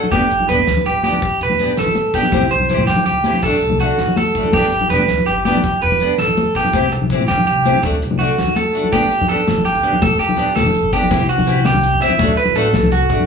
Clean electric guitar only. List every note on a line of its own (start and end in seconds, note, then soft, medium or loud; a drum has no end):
0.12 0.47 G4 medium
0.49 0.84 B4 medium
0.86 1.03 G4 medium
1.04 1.39 G4 medium
1.43 1.77 B4 medium
1.79 2.13 A4 medium
2.15 2.50 G4 medium
2.51 2.86 C5 medium
2.87 3.05 G4 medium
3.06 3.41 G4 medium
3.44 3.79 A4 medium
3.80 4.15 F#4 medium
4.17 4.52 A4 medium
4.54 4.89 G4 medium
4.90 5.25 B4 medium
5.26 5.44 G4 medium
5.45 5.80 G4 medium
5.82 6.17 B4 medium
6.19 6.54 A4 medium
6.56 6.91 G4 medium
6.93 muted clean electric guitar stroke medium
7.28 7.46 G4 medium
7.47 7.82 G4 medium
7.83 muted clean electric guitar stroke medium
8.19 8.54 F#4 medium
8.56 8.91 A4 medium
8.92 9.27 G4 medium
9.29 9.64 A4 medium
9.65 10.00 G4 medium
10.02 10.19 A4 medium
10.19 10.54 G4 medium
10.56 10.91 A4 medium
10.93 11.28 G4 medium
11.29 11.64 F#4 medium
11.66 12.00 G4 medium
12.02 12.36 E5 medium
12.37 12.55 B4 medium
12.56 12.90 A4 medium
12.92 13.26 F#4 medium